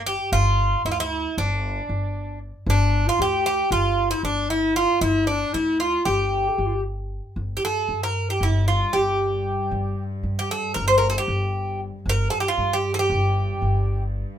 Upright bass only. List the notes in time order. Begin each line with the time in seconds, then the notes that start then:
Already playing: G1
0.32 G1
0.85 D2
1.38 G1
1.89 G1
2.66 G1
3.19 D2
3.71 G1
4.23 G1
5.01 G1
5.54 D2
6.06 G1
6.58 G1
7.36 G1
7.88 G2
8.41 G1
8.93 G1
9.71 G1
10.23 G2
10.76 G1
11.28 G1
12.06 G1
12.58 G2
13.10 G1
13.62 G1